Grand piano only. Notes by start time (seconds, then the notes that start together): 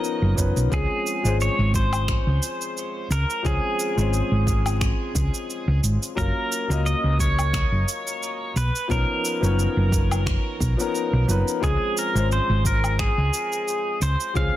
Already playing: F3 B3 C#4 D#4 A#4 C#5
0.35 F3 B3 C#4 D#4 B4
0.70 F3 G#3 C4 C#4 G#4
1.23 F3 G#3 C4 C#4
1.27 C5
3.43 F3 G#3 C4 C#4 G#4
3.95 F3 G#3 C4 C#4 C5
6.15 F#3 A#3 C#4 F4 A#4
6.68 F#3 A#3 C#4 F4 D#5
8.88 F3 B3 C#4 D#4 A#4
9.41 F3 B3 C#4 D#4
9.45 C#5
10.77 F3 B3 C#4 D#4 A#4
11.27 F3 B3 C#4 D#4 B4
11.60 F3 G#3 C4 C#4 G#4
12.13 F3 G#3 C4 C#4 C5
14.34 F3 G#3 C4 C#4 G#4